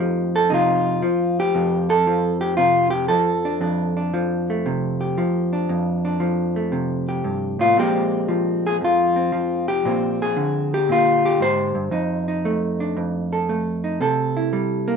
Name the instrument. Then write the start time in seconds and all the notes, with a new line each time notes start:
hollow-body jazz guitar
Already playing: F2 A3 D#4 G4
0.00 F3
0.36 A4
0.50 C3 D#4 F4
1.02 F3
1.40 G4
1.55 F2
1.90 A4
2.07 F3
2.41 G4
2.57 C3 F4
2.90 G4
3.08 F3 A4
3.45 D4
3.61 F2 D4
3.97 D4
4.14 F3
4.50 A3
4.66 C3
5.01 G4
5.18 F3
5.53 D4
5.69 F2
6.05 D4
6.20 F3
6.56 A3
6.72 C3
7.09 G4
7.24 G2
7.59 A2 F4
7.77 A#2 F3 G#3 C4 G4
8.28 F3
8.67 G#4
8.81 F2 F4
9.16 C4
9.32 F3
9.68 G4
9.85 A#2 C4
10.22 G#4
10.37 D3
10.74 G4
10.89 A#2 F4
11.25 G4
11.40 G#2 C5
11.75 G2
11.91 F2 D#4
12.28 D#4
12.45 A3
12.80 D4
12.97 F2
13.33 A4
13.49 A3
13.84 D#4
14.01 C3 A4
14.37 E4
14.53 G3
14.88 A#3